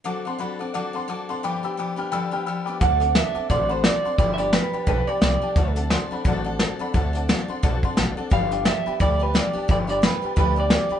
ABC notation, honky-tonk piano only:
X:1
M:4/4
L:1/8
Q:"Swing" 1/4=174
K:Dmix
V:1 name="Honky-tonk piano"
[fad'] [fac'] [fab] [fad'] [fad'] [fac'] [fad'] [fac'] | [gbd'] [gbe'] [gbd'] [gb=f'] [gbe'] [gbf'] [gbe'] [gbd'] | [fad'] [fad'] [fad'] [fad'] [fac'] [fab] [fac'] [fac'] | [dgb] [dgb] [dgb] [dgb] [dga] [dgb] [dgb] [dga] |
[dfa] [dfa] [dfc'] [dfb] [dfa] [dfa] [dfa] [dfb] | [dfa] [dfa] [dfa] [dfc'] [dfa] [dfc'] [dfa] [dfa] | [dgb] [dgd'] [dga] [dgb] [dgb] [dgb] [dgd'] [dga] | [dgb] [dgb] [dgb] [dgb] [dgb] [dgd'] [dgd'] [dgb] |]